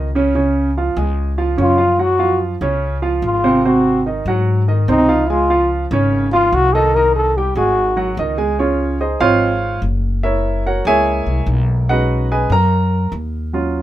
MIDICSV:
0, 0, Header, 1, 4, 480
1, 0, Start_track
1, 0, Tempo, 412088
1, 411, Time_signature, 4, 2, 24, 8
1, 16100, End_track
2, 0, Start_track
2, 0, Title_t, "Trombone"
2, 0, Program_c, 0, 57
2, 1875, Note_on_c, 0, 65, 97
2, 2345, Note_on_c, 0, 66, 94
2, 2362, Note_off_c, 0, 65, 0
2, 2818, Note_off_c, 0, 66, 0
2, 3781, Note_on_c, 0, 65, 93
2, 4253, Note_on_c, 0, 66, 89
2, 4271, Note_off_c, 0, 65, 0
2, 4731, Note_off_c, 0, 66, 0
2, 5696, Note_on_c, 0, 63, 92
2, 6169, Note_on_c, 0, 65, 86
2, 6187, Note_off_c, 0, 63, 0
2, 6648, Note_off_c, 0, 65, 0
2, 7369, Note_on_c, 0, 65, 96
2, 7621, Note_on_c, 0, 66, 101
2, 7639, Note_off_c, 0, 65, 0
2, 7844, Note_on_c, 0, 69, 95
2, 7861, Note_off_c, 0, 66, 0
2, 8093, Note_on_c, 0, 70, 100
2, 8111, Note_off_c, 0, 69, 0
2, 8329, Note_off_c, 0, 70, 0
2, 8337, Note_on_c, 0, 69, 94
2, 8584, Note_on_c, 0, 67, 83
2, 8602, Note_off_c, 0, 69, 0
2, 8815, Note_off_c, 0, 67, 0
2, 8826, Note_on_c, 0, 66, 94
2, 9489, Note_off_c, 0, 66, 0
2, 16100, End_track
3, 0, Start_track
3, 0, Title_t, "Grand piano"
3, 0, Program_c, 1, 0
3, 177, Note_on_c, 1, 49, 89
3, 184, Note_on_c, 1, 61, 90
3, 189, Note_on_c, 1, 73, 89
3, 372, Note_off_c, 1, 49, 0
3, 376, Note_off_c, 1, 61, 0
3, 379, Note_off_c, 1, 73, 0
3, 409, Note_on_c, 1, 49, 84
3, 409, Note_on_c, 1, 61, 87
3, 420, Note_on_c, 1, 73, 78
3, 803, Note_off_c, 1, 61, 0
3, 804, Note_off_c, 1, 49, 0
3, 810, Note_off_c, 1, 73, 0
3, 902, Note_on_c, 1, 53, 71
3, 904, Note_on_c, 1, 65, 73
3, 906, Note_on_c, 1, 77, 70
3, 1094, Note_off_c, 1, 53, 0
3, 1096, Note_off_c, 1, 65, 0
3, 1097, Note_off_c, 1, 77, 0
3, 1128, Note_on_c, 1, 56, 84
3, 1129, Note_on_c, 1, 68, 80
3, 1129, Note_on_c, 1, 80, 77
3, 1523, Note_off_c, 1, 56, 0
3, 1523, Note_off_c, 1, 68, 0
3, 1524, Note_off_c, 1, 80, 0
3, 1606, Note_on_c, 1, 65, 77
3, 1608, Note_on_c, 1, 77, 78
3, 1611, Note_on_c, 1, 53, 78
3, 1805, Note_off_c, 1, 65, 0
3, 1806, Note_off_c, 1, 77, 0
3, 1808, Note_off_c, 1, 53, 0
3, 1833, Note_on_c, 1, 49, 79
3, 1840, Note_on_c, 1, 61, 80
3, 1842, Note_on_c, 1, 73, 79
3, 2037, Note_off_c, 1, 49, 0
3, 2041, Note_off_c, 1, 61, 0
3, 2042, Note_off_c, 1, 73, 0
3, 2066, Note_on_c, 1, 53, 75
3, 2070, Note_on_c, 1, 65, 77
3, 2073, Note_on_c, 1, 77, 77
3, 2273, Note_off_c, 1, 53, 0
3, 2275, Note_off_c, 1, 65, 0
3, 2277, Note_off_c, 1, 77, 0
3, 2316, Note_on_c, 1, 66, 73
3, 2318, Note_on_c, 1, 54, 71
3, 2324, Note_on_c, 1, 78, 74
3, 2519, Note_off_c, 1, 66, 0
3, 2520, Note_off_c, 1, 54, 0
3, 2524, Note_off_c, 1, 78, 0
3, 2551, Note_on_c, 1, 65, 77
3, 2556, Note_on_c, 1, 53, 81
3, 2559, Note_on_c, 1, 77, 75
3, 2952, Note_off_c, 1, 65, 0
3, 2955, Note_off_c, 1, 53, 0
3, 2957, Note_off_c, 1, 77, 0
3, 3046, Note_on_c, 1, 49, 90
3, 3051, Note_on_c, 1, 61, 89
3, 3052, Note_on_c, 1, 73, 90
3, 3441, Note_off_c, 1, 49, 0
3, 3444, Note_off_c, 1, 61, 0
3, 3445, Note_off_c, 1, 73, 0
3, 3520, Note_on_c, 1, 65, 80
3, 3521, Note_on_c, 1, 53, 81
3, 3524, Note_on_c, 1, 77, 81
3, 3917, Note_off_c, 1, 65, 0
3, 3918, Note_off_c, 1, 53, 0
3, 3920, Note_off_c, 1, 77, 0
3, 4003, Note_on_c, 1, 48, 91
3, 4007, Note_on_c, 1, 60, 86
3, 4008, Note_on_c, 1, 72, 91
3, 4202, Note_off_c, 1, 48, 0
3, 4205, Note_off_c, 1, 60, 0
3, 4205, Note_off_c, 1, 72, 0
3, 4253, Note_on_c, 1, 48, 82
3, 4257, Note_on_c, 1, 60, 85
3, 4257, Note_on_c, 1, 72, 84
3, 4645, Note_off_c, 1, 48, 0
3, 4647, Note_off_c, 1, 60, 0
3, 4647, Note_off_c, 1, 72, 0
3, 4731, Note_on_c, 1, 51, 72
3, 4733, Note_on_c, 1, 63, 74
3, 4742, Note_on_c, 1, 75, 69
3, 4927, Note_off_c, 1, 51, 0
3, 4928, Note_off_c, 1, 63, 0
3, 4933, Note_off_c, 1, 75, 0
3, 4979, Note_on_c, 1, 66, 82
3, 4983, Note_on_c, 1, 54, 85
3, 4983, Note_on_c, 1, 78, 81
3, 5368, Note_off_c, 1, 66, 0
3, 5370, Note_off_c, 1, 54, 0
3, 5371, Note_off_c, 1, 78, 0
3, 5451, Note_on_c, 1, 51, 77
3, 5454, Note_on_c, 1, 63, 76
3, 5456, Note_on_c, 1, 75, 80
3, 5646, Note_off_c, 1, 51, 0
3, 5648, Note_off_c, 1, 63, 0
3, 5650, Note_off_c, 1, 75, 0
3, 5688, Note_on_c, 1, 60, 86
3, 5690, Note_on_c, 1, 48, 83
3, 5694, Note_on_c, 1, 72, 83
3, 5884, Note_off_c, 1, 60, 0
3, 5886, Note_off_c, 1, 48, 0
3, 5888, Note_off_c, 1, 72, 0
3, 5921, Note_on_c, 1, 53, 78
3, 5925, Note_on_c, 1, 65, 75
3, 5927, Note_on_c, 1, 77, 82
3, 6120, Note_off_c, 1, 53, 0
3, 6123, Note_off_c, 1, 65, 0
3, 6124, Note_off_c, 1, 77, 0
3, 6171, Note_on_c, 1, 56, 81
3, 6172, Note_on_c, 1, 68, 76
3, 6175, Note_on_c, 1, 80, 77
3, 6366, Note_off_c, 1, 56, 0
3, 6367, Note_off_c, 1, 68, 0
3, 6369, Note_off_c, 1, 80, 0
3, 6406, Note_on_c, 1, 65, 76
3, 6409, Note_on_c, 1, 53, 83
3, 6410, Note_on_c, 1, 77, 85
3, 6800, Note_off_c, 1, 65, 0
3, 6802, Note_off_c, 1, 53, 0
3, 6802, Note_off_c, 1, 77, 0
3, 6893, Note_on_c, 1, 49, 92
3, 6905, Note_on_c, 1, 61, 96
3, 6911, Note_on_c, 1, 73, 94
3, 7284, Note_off_c, 1, 49, 0
3, 7291, Note_off_c, 1, 61, 0
3, 7294, Note_off_c, 1, 73, 0
3, 7372, Note_on_c, 1, 53, 86
3, 7375, Note_on_c, 1, 77, 85
3, 7376, Note_on_c, 1, 65, 85
3, 7763, Note_off_c, 1, 53, 0
3, 7765, Note_off_c, 1, 77, 0
3, 7766, Note_off_c, 1, 65, 0
3, 7859, Note_on_c, 1, 51, 93
3, 7863, Note_on_c, 1, 75, 92
3, 7864, Note_on_c, 1, 63, 94
3, 8050, Note_off_c, 1, 51, 0
3, 8053, Note_off_c, 1, 63, 0
3, 8053, Note_off_c, 1, 75, 0
3, 8101, Note_on_c, 1, 51, 83
3, 8108, Note_on_c, 1, 63, 89
3, 8111, Note_on_c, 1, 75, 88
3, 8488, Note_off_c, 1, 51, 0
3, 8492, Note_off_c, 1, 63, 0
3, 8494, Note_off_c, 1, 75, 0
3, 8585, Note_on_c, 1, 55, 71
3, 8590, Note_on_c, 1, 67, 73
3, 8595, Note_on_c, 1, 79, 75
3, 8774, Note_off_c, 1, 55, 0
3, 8777, Note_off_c, 1, 67, 0
3, 8780, Note_off_c, 1, 79, 0
3, 8814, Note_on_c, 1, 68, 80
3, 8815, Note_on_c, 1, 56, 80
3, 8818, Note_on_c, 1, 80, 80
3, 9204, Note_off_c, 1, 68, 0
3, 9205, Note_off_c, 1, 56, 0
3, 9207, Note_off_c, 1, 80, 0
3, 9277, Note_on_c, 1, 54, 83
3, 9280, Note_on_c, 1, 66, 80
3, 9283, Note_on_c, 1, 78, 76
3, 9477, Note_off_c, 1, 54, 0
3, 9479, Note_off_c, 1, 66, 0
3, 9481, Note_off_c, 1, 78, 0
3, 9539, Note_on_c, 1, 75, 87
3, 9541, Note_on_c, 1, 63, 82
3, 9543, Note_on_c, 1, 51, 84
3, 9730, Note_off_c, 1, 75, 0
3, 9731, Note_off_c, 1, 63, 0
3, 9733, Note_off_c, 1, 51, 0
3, 9759, Note_on_c, 1, 68, 83
3, 9760, Note_on_c, 1, 56, 81
3, 9763, Note_on_c, 1, 80, 81
3, 9958, Note_off_c, 1, 68, 0
3, 9959, Note_off_c, 1, 56, 0
3, 9961, Note_off_c, 1, 80, 0
3, 10008, Note_on_c, 1, 73, 75
3, 10015, Note_on_c, 1, 61, 64
3, 10016, Note_on_c, 1, 65, 64
3, 10020, Note_on_c, 1, 68, 61
3, 10453, Note_off_c, 1, 73, 0
3, 10457, Note_off_c, 1, 61, 0
3, 10458, Note_off_c, 1, 65, 0
3, 10460, Note_off_c, 1, 68, 0
3, 10489, Note_on_c, 1, 68, 64
3, 10491, Note_on_c, 1, 75, 73
3, 10493, Note_on_c, 1, 63, 63
3, 10495, Note_on_c, 1, 72, 63
3, 10709, Note_off_c, 1, 63, 0
3, 10711, Note_off_c, 1, 72, 0
3, 10717, Note_on_c, 1, 53, 58
3, 10720, Note_off_c, 1, 68, 0
3, 10721, Note_off_c, 1, 75, 0
3, 10723, Note_on_c, 1, 77, 105
3, 10726, Note_on_c, 1, 63, 65
3, 10727, Note_on_c, 1, 60, 52
3, 10728, Note_on_c, 1, 72, 87
3, 10729, Note_on_c, 1, 65, 87
3, 10734, Note_on_c, 1, 73, 83
3, 11040, Note_off_c, 1, 53, 0
3, 11045, Note_off_c, 1, 63, 0
3, 11046, Note_off_c, 1, 60, 0
3, 11398, Note_off_c, 1, 77, 0
3, 11401, Note_off_c, 1, 65, 0
3, 11401, Note_off_c, 1, 72, 0
3, 11404, Note_off_c, 1, 73, 0
3, 11921, Note_on_c, 1, 76, 88
3, 11926, Note_on_c, 1, 70, 63
3, 11930, Note_on_c, 1, 73, 69
3, 11931, Note_on_c, 1, 64, 70
3, 12370, Note_off_c, 1, 76, 0
3, 12373, Note_off_c, 1, 70, 0
3, 12375, Note_off_c, 1, 64, 0
3, 12375, Note_off_c, 1, 73, 0
3, 12420, Note_on_c, 1, 70, 67
3, 12424, Note_on_c, 1, 73, 61
3, 12424, Note_on_c, 1, 78, 77
3, 12426, Note_on_c, 1, 66, 62
3, 12646, Note_off_c, 1, 70, 0
3, 12648, Note_off_c, 1, 73, 0
3, 12648, Note_off_c, 1, 78, 0
3, 12649, Note_off_c, 1, 66, 0
3, 12653, Note_on_c, 1, 56, 62
3, 12660, Note_on_c, 1, 80, 112
3, 12661, Note_on_c, 1, 58, 56
3, 12661, Note_on_c, 1, 68, 90
3, 12663, Note_on_c, 1, 64, 67
3, 12665, Note_on_c, 1, 73, 85
3, 12670, Note_on_c, 1, 76, 88
3, 13327, Note_off_c, 1, 80, 0
3, 13328, Note_off_c, 1, 68, 0
3, 13330, Note_off_c, 1, 73, 0
3, 13332, Note_off_c, 1, 76, 0
3, 13803, Note_off_c, 1, 56, 0
3, 13808, Note_off_c, 1, 58, 0
3, 13809, Note_off_c, 1, 64, 0
3, 13848, Note_on_c, 1, 56, 56
3, 13854, Note_on_c, 1, 78, 91
3, 13859, Note_on_c, 1, 61, 53
3, 13859, Note_on_c, 1, 75, 67
3, 13863, Note_on_c, 1, 63, 69
3, 13865, Note_on_c, 1, 71, 76
3, 13866, Note_on_c, 1, 66, 71
3, 14297, Note_off_c, 1, 78, 0
3, 14300, Note_off_c, 1, 75, 0
3, 14303, Note_off_c, 1, 71, 0
3, 14304, Note_off_c, 1, 66, 0
3, 14346, Note_on_c, 1, 68, 69
3, 14346, Note_on_c, 1, 80, 81
3, 14348, Note_on_c, 1, 71, 70
3, 14349, Note_on_c, 1, 75, 65
3, 14532, Note_off_c, 1, 56, 0
3, 14537, Note_off_c, 1, 61, 0
3, 14539, Note_off_c, 1, 63, 0
3, 14570, Note_off_c, 1, 68, 0
3, 14570, Note_off_c, 1, 71, 0
3, 14570, Note_off_c, 1, 80, 0
3, 14571, Note_off_c, 1, 75, 0
3, 14585, Note_on_c, 1, 70, 82
3, 14585, Note_on_c, 1, 82, 99
3, 15249, Note_off_c, 1, 70, 0
3, 15249, Note_off_c, 1, 82, 0
3, 15763, Note_on_c, 1, 54, 60
3, 15770, Note_on_c, 1, 61, 52
3, 15774, Note_on_c, 1, 65, 67
3, 16100, Note_off_c, 1, 54, 0
3, 16100, Note_off_c, 1, 61, 0
3, 16100, Note_off_c, 1, 65, 0
3, 16100, End_track
4, 0, Start_track
4, 0, Title_t, "Upright bass"
4, 0, Program_c, 2, 32
4, 0, Note_on_c, 2, 37, 95
4, 1054, Note_off_c, 2, 37, 0
4, 1124, Note_on_c, 2, 37, 101
4, 1801, Note_off_c, 2, 37, 0
4, 1844, Note_on_c, 2, 42, 90
4, 2976, Note_off_c, 2, 42, 0
4, 3038, Note_on_c, 2, 37, 93
4, 3717, Note_off_c, 2, 37, 0
4, 3753, Note_on_c, 2, 32, 91
4, 4890, Note_off_c, 2, 32, 0
4, 4957, Note_on_c, 2, 44, 98
4, 5636, Note_off_c, 2, 44, 0
4, 5685, Note_on_c, 2, 37, 98
4, 6815, Note_off_c, 2, 37, 0
4, 6882, Note_on_c, 2, 32, 101
4, 7557, Note_off_c, 2, 32, 0
4, 7599, Note_on_c, 2, 36, 96
4, 8731, Note_off_c, 2, 36, 0
4, 8800, Note_on_c, 2, 32, 96
4, 9476, Note_off_c, 2, 32, 0
4, 9519, Note_on_c, 2, 37, 103
4, 10652, Note_off_c, 2, 37, 0
4, 10719, Note_on_c, 2, 32, 97
4, 11396, Note_off_c, 2, 32, 0
4, 11436, Note_on_c, 2, 30, 89
4, 12571, Note_off_c, 2, 30, 0
4, 12638, Note_on_c, 2, 37, 101
4, 13088, Note_off_c, 2, 37, 0
4, 13120, Note_on_c, 2, 36, 77
4, 13346, Note_off_c, 2, 36, 0
4, 13354, Note_on_c, 2, 35, 98
4, 14490, Note_off_c, 2, 35, 0
4, 14556, Note_on_c, 2, 42, 96
4, 15234, Note_off_c, 2, 42, 0
4, 15279, Note_on_c, 2, 39, 94
4, 16100, Note_off_c, 2, 39, 0
4, 16100, End_track
0, 0, End_of_file